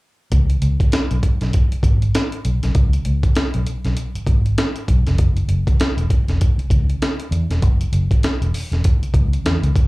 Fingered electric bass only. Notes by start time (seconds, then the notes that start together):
0.32 C#2
0.62 C#2
1.11 B1
1.41 B1
1.72 muted fingered electric bass stroke
1.83 G#1
2.45 B1
2.64 B1
2.75 C#2
3.06 C#2
3.55 B1
3.85 B1
4.15 muted fingered electric bass stroke
4.27 G#1
4.89 B1
5.06 F1
5.19 F#1
5.48 F#1
5.97 E1
6.28 E1
6.58 muted fingered electric bass stroke
6.71 C#2
7.31 E2
7.50 E1
7.63 F#1
7.92 F#1
8.41 E1
8.72 E1
9.03 muted fingered electric bass stroke
9.14 C#2
9.45 E2
9.63 C#2